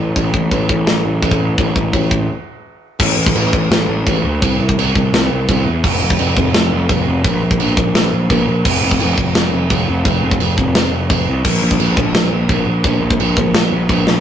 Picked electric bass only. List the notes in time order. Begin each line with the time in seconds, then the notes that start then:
Already playing: A1
0.16 A1
0.34 A1
0.52 A1
0.69 A1
0.88 A1
1.05 A1
1.23 A1
1.58 A1
1.76 A1
1.93 A1
3.00 A1
3.17 A1
3.35 A1
3.53 A1
3.71 A1
3.89 A1
4.07 A1
4.25 D2
4.42 C2
4.60 C2
4.78 C2
4.96 C2
5.14 C2
5.31 C2
5.49 C2
5.67 E2
5.84 F1
6.02 F1
6.19 F1
6.37 F1
6.54 F1
6.72 F1
6.89 F1
7.07 F1
7.24 A#1
7.42 A#1
7.59 A#1
7.77 A#1
7.95 A#1
8.13 A#1
8.30 A#1
8.48 A#1
8.65 F1
8.83 F1
9.01 F1
9.18 F1
9.35 F1
9.53 F1
9.71 F1
9.89 F1
10.05 F1
10.23 F1
10.40 F1
10.58 F1
10.75 F1
10.93 F1
11.10 F1
11.28 C2
11.45 A#1
11.62 A#1
11.80 A#1
11.97 A#1
12.15 A#1
12.32 A#1
12.49 A#1
12.67 A#1
12.84 A#1
13.02 A#1
13.20 A#1
13.37 A#1
13.55 A#1
13.72 A#1
13.89 A#1
14.08 A#1